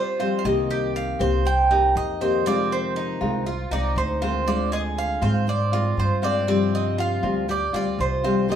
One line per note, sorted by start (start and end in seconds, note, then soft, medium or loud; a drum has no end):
0.00 0.19 G3 soft
0.00 0.19 C4 soft
0.00 0.18 F4 soft
0.00 0.19 F4 medium
0.00 0.40 C5 medium
0.19 0.44 F3 medium
0.19 0.44 G3 medium
0.19 0.44 C4 medium
0.19 0.44 F4 medium
0.19 0.44 C5 medium
0.39 0.45 F5 medium
0.44 1.16 C2 medium
0.44 1.19 C3 medium
0.44 1.19 D#3 medium
0.44 1.20 A#3 medium
0.44 1.19 C4 medium
0.44 1.18 G4 medium
0.44 0.92 D#5 loud
0.71 1.19 G4 medium
0.96 1.46 F5 loud
1.19 1.92 C2 medium
1.19 1.44 D#3 medium
1.19 1.44 A#3 medium
1.19 1.44 C4 medium
1.19 1.44 G4 medium
1.19 1.69 C5 medium
1.45 1.96 G5 loud
1.45 muted nylon-string guitar stroke medium
1.71 2.21 A#3 soft
1.71 2.20 C4 soft
1.71 2.19 D#4 medium
1.71 2.20 G4 medium
1.95 3.15 F2 medium
1.95 2.43 D#5 loud
2.21 2.45 D#3 medium
2.21 2.46 A#3 medium
2.21 2.45 C4 medium
2.21 2.45 G4 medium
2.21 2.45 C5 medium
2.46 3.20 C3 medium
2.46 3.21 D#3 medium
2.46 3.22 G#3 medium
2.46 2.95 C4 medium
2.46 3.21 C4 medium
2.46 3.20 F4 medium
2.46 2.70 D5 loud
2.72 3.75 C5 medium
2.96 3.45 D#4 medium
3.21 3.68 C2 medium
3.21 3.45 D#3 medium
3.21 3.46 G#3 medium
3.21 3.46 C4 medium
3.21 3.45 F4 medium
3.46 3.71 F4 medium
3.46 muted nylon-string guitar stroke medium
3.71 3.95 C2 medium
3.71 4.21 G#3 soft
3.71 4.21 C4 soft
3.71 4.20 D#4 medium
3.71 4.21 F4 soft
3.71 3.96 D5 loud
3.96 5.16 D2 medium
3.96 4.49 C5 loud
4.22 4.46 D#3 medium
4.22 4.46 G#3 medium
4.22 4.46 C4 medium
4.22 4.46 F4 medium
4.22 4.71 C5 medium
4.46 5.21 D3 medium
4.46 5.21 G#3 medium
4.46 5.22 C4 medium
4.46 5.21 F4 medium
4.46 4.73 D5 loud
4.72 5.21 G#4 medium
4.72 4.80 D#5 medium
4.98 5.49 F5 loud
5.21 5.94 G#2 loud
5.21 5.46 G#3 medium
5.21 5.46 C4 medium
5.21 5.46 F4 medium
5.21 5.71 C5 medium
5.47 5.95 D5 medium
5.47 muted nylon-string guitar stroke medium
5.72 6.23 G#3 soft
5.72 6.22 C4 soft
5.72 6.21 F4 soft
5.72 6.22 F4 medium
5.97 7.17 G2 medium
5.97 6.25 C5 medium
6.22 6.48 G#3 medium
6.22 6.47 C4 medium
6.22 6.47 F4 medium
6.22 6.47 C5 medium
6.22 6.74 D5 loud
6.47 7.22 C3 medium
6.47 7.23 F3 medium
6.47 7.24 G3 medium
6.47 6.97 C4 medium
6.47 7.23 C4 medium
6.47 7.21 F4 medium
6.75 7.00 D#5 medium
6.98 7.47 F4 medium
6.98 7.46 F5 medium
7.23 7.70 D2 medium
7.23 7.47 F3 medium
7.23 7.48 G3 medium
7.23 7.48 C4 medium
7.23 7.47 F4 medium
7.48 7.73 G4 medium
7.48 7.75 D5 medium
7.48 muted nylon-string guitar stroke medium
7.73 7.97 D2 medium
7.73 8.24 G3 soft
7.73 8.23 C4 soft
7.73 8.22 F4 soft
7.73 8.23 F4 medium
7.73 8.01 D5 medium
7.99 8.55 C2 medium
7.99 8.47 C5 medium
8.24 8.48 F3 medium
8.24 8.49 G3 medium
8.24 8.49 C4 medium
8.24 8.48 F4 medium
8.24 8.55 C5 medium
8.48 8.55 C3 medium
8.48 8.55 D#3 medium
8.48 8.55 A#3 medium
8.48 8.55 C4 medium
8.48 8.55 G4 medium
8.48 8.55 D#5 medium